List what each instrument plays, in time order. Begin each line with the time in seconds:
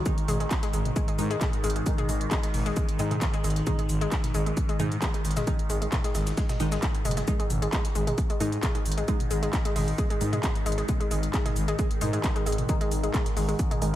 Already playing: synth drone G#2 D#3
0.06 synth stab D#3 G#3 D#4, synth arpeggio sound G#3, kick, closed hi-hat, shaker
0.18 closed hi-hat
0.28 fm bass G#1, synth arpeggio sound G#3, open hi-hat, mid tom, shaker
0.40 synth arpeggio sound G#3, closed hi-hat
0.51 kick, snare, clap, closed hi-hat, shaker
0.63 synth arpeggio sound G#3, snare, closed hi-hat
0.73 fm bass G#1, synth arpeggio sound G#3, open hi-hat, shaker
0.85 closed hi-hat, mid tom
0.96 synth arpeggio sound G#3, kick, closed hi-hat, shaker
1.08 synth arpeggio sound G#3, closed hi-hat
1.19 fm bass G#2, synth stab D#3 G#3 D#4, open hi-hat, shaker
1.31 synth arpeggio sound G#3, closed hi-hat
1.41 kick, snare, clap, closed hi-hat, mid tom, shaker
1.53 closed hi-hat
1.64 fm bass G#1, synth arpeggio sound G#3, open hi-hat, shaker
1.70 closed hi-hat
1.76 synth arpeggio sound G#3, closed hi-hat
1.86 synth stab D#3 G#3 D#4, kick, closed hi-hat, shaker
1.98 synth arpeggio sound G#3, closed hi-hat, mid tom
2.09 fm bass G#1, synth arpeggio sound G#3, open hi-hat, shaker
2.21 closed hi-hat
2.31 synth arpeggio sound G#3, kick, snare, clap, closed hi-hat, shaker
2.43 synth arpeggio sound G#3, snare, closed hi-hat
2.54 fm bass G#1, open hi-hat, mid tom
2.66 synth arpeggio sound G#3, closed hi-hat
2.76 synth arpeggio sound G#3, kick, closed hi-hat, shaker
2.89 closed hi-hat
2.99 fm bass G#2, synth stab D#3 G#3 D#4, synth arpeggio sound G#3, open hi-hat, shaker
3.11 synth arpeggio sound G#3, closed hi-hat, mid tom
3.22 kick, snare, clap, closed hi-hat, shaker
3.34 synth arpeggio sound G#3, closed hi-hat
3.44 fm bass G#1, synth arpeggio sound G#3, open hi-hat, shaker
3.50 closed hi-hat
3.56 snare, closed hi-hat
3.67 synth stab D#3 G#3 D#4, synth arpeggio sound G#3, kick, closed hi-hat, mid tom, shaker
3.79 synth arpeggio sound G#3, closed hi-hat
3.89 fm bass G#1, open hi-hat, shaker
4.01 synth arpeggio sound G#3, closed hi-hat
4.12 synth arpeggio sound G#3, kick, snare, clap, closed hi-hat, shaker
4.24 snare, closed hi-hat, mid tom
4.34 fm bass G#1, synth arpeggio sound G#3, open hi-hat, shaker
4.46 synth arpeggio sound G#3, closed hi-hat
4.57 kick, closed hi-hat, shaker
4.69 synth arpeggio sound G#3, closed hi-hat
4.80 fm bass G#2, synth stab D#3 G#3 D#4, synth arpeggio sound G#3, open hi-hat, mid tom, shaker
4.92 closed hi-hat
5.02 synth arpeggio sound G#3, kick, snare, clap, closed hi-hat, shaker
5.14 synth arpeggio sound G#3, closed hi-hat
5.25 fm bass G#1, snare, open hi-hat, shaker
5.31 closed hi-hat
5.37 synth arpeggio sound G#3, snare, closed hi-hat, mid tom, shaker
5.47 synth stab D#3 G#3 D#4, synth arpeggio sound G#3, kick, closed hi-hat, shaker
5.59 closed hi-hat
5.70 fm bass G#1, synth arpeggio sound G#3, open hi-hat, shaker
5.82 synth arpeggio sound G#3, closed hi-hat
5.92 kick, snare, clap, closed hi-hat, mid tom, shaker
6.04 synth arpeggio sound G#3, snare, closed hi-hat
6.15 fm bass G#1, synth arpeggio sound G#3, snare, open hi-hat, shaker
6.27 snare, closed hi-hat, shaker
6.37 synth arpeggio sound G#3, kick, snare, closed hi-hat, shaker
6.49 synth arpeggio sound G#3, snare, closed hi-hat, mid tom, shaker
6.60 fm bass G#1, synth stab D#3 G#3 D#4, snare, open hi-hat, shaker
6.72 synth arpeggio sound G#3, snare, closed hi-hat, shaker
6.83 synth arpeggio sound G#3, kick, snare, clap, closed hi-hat, shaker
6.95 closed hi-hat
7.05 fm bass F#1, synth arpeggio sound G#3, open hi-hat, mid tom, shaker
7.11 closed hi-hat
7.17 synth arpeggio sound G#3, snare, closed hi-hat, shaker
7.28 synth drone G#2 D#3, synth stab D#3 G#3 D#4, synth arpeggio sound G#3, kick, closed hi-hat, shaker
7.40 synth arpeggio sound G#3, closed hi-hat
7.50 fm bass G#1, open hi-hat, mid tom, shaker
7.62 synth arpeggio sound G#3, closed hi-hat
7.73 synth arpeggio sound G#3, kick, snare, clap, closed hi-hat, shaker
7.85 snare, closed hi-hat
7.95 fm bass G#1, synth arpeggio sound G#3, open hi-hat, shaker
8.07 synth arpeggio sound G#3, closed hi-hat, mid tom
8.18 kick, closed hi-hat, shaker
8.30 synth arpeggio sound G#3, closed hi-hat
8.40 fm bass G#2, synth stab D#3 G#3 D#4, synth arpeggio sound G#3, open hi-hat, shaker
8.52 closed hi-hat
8.63 synth arpeggio sound G#3, kick, snare, clap, closed hi-hat, mid tom, shaker
8.75 synth arpeggio sound G#3, closed hi-hat
8.86 fm bass G#1, open hi-hat, shaker
8.92 closed hi-hat
8.98 synth arpeggio sound G#3, closed hi-hat
9.08 synth stab D#3 G#3 D#4, synth arpeggio sound G#3, kick, closed hi-hat, shaker
9.20 closed hi-hat, mid tom
9.31 fm bass G#1, synth arpeggio sound G#3, open hi-hat, shaker
9.43 synth arpeggio sound G#3, closed hi-hat
9.53 kick, snare, clap, closed hi-hat, shaker
9.65 synth arpeggio sound G#3, snare, closed hi-hat
9.76 fm bass G#1, synth arpeggio sound G#3, open hi-hat, mid tom
9.88 closed hi-hat
9.98 synth arpeggio sound G#3, kick, closed hi-hat, shaker
10.10 synth arpeggio sound G#3, closed hi-hat
10.21 fm bass G#2, synth stab D#3 G#3 D#4, open hi-hat, shaker
10.33 synth arpeggio sound G#3, closed hi-hat, mid tom
10.43 synth arpeggio sound G#3, kick, snare, clap, closed hi-hat, shaker
10.55 closed hi-hat
10.66 fm bass G#1, synth arpeggio sound G#3, open hi-hat, shaker
10.72 closed hi-hat
10.78 synth arpeggio sound G#3, snare, closed hi-hat
10.89 synth stab D#3 G#3 D#4, kick, closed hi-hat, mid tom, shaker
11.00 synth arpeggio sound G#3, closed hi-hat
11.11 fm bass G#1, synth arpeggio sound G#3, open hi-hat, shaker
11.23 closed hi-hat
11.34 synth arpeggio sound G#3, kick, snare, clap, closed hi-hat, shaker
11.46 synth arpeggio sound G#3, snare, closed hi-hat, mid tom
11.56 fm bass G#1, open hi-hat, shaker
11.68 synth arpeggio sound G#3, closed hi-hat
11.79 synth arpeggio sound G#3, kick, closed hi-hat, shaker
11.91 closed hi-hat
12.01 fm bass G#2, synth stab D#3 G#3 D#4, synth arpeggio sound G#3, open hi-hat, mid tom, shaker
12.13 synth arpeggio sound G#3, closed hi-hat
12.24 kick, snare, clap, closed hi-hat, shaker
12.36 synth arpeggio sound G#3, closed hi-hat
12.46 fm bass G#1, synth arpeggio sound G#3, open hi-hat, shaker
12.52 closed hi-hat
12.58 closed hi-hat, mid tom
12.69 synth stab D#3 G#3 D#4, synth arpeggio sound G#3, kick, closed hi-hat, shaker
12.81 synth arpeggio sound G#3, closed hi-hat
12.91 fm bass G#1, open hi-hat, shaker
13.03 synth arpeggio sound G#3, closed hi-hat
13.14 synth arpeggio sound G#3, kick, snare, clap, closed hi-hat, mid tom, shaker
13.26 snare, closed hi-hat
13.37 fm bass G#1, synth arpeggio sound G#3, open hi-hat
13.49 synth arpeggio sound G#3, closed hi-hat
13.59 kick, closed hi-hat, shaker
13.71 synth arpeggio sound G#3, closed hi-hat, mid tom
13.82 fm bass G#1, synth stab D#3 G#3 D#4, synth arpeggio sound G#3, open hi-hat, shaker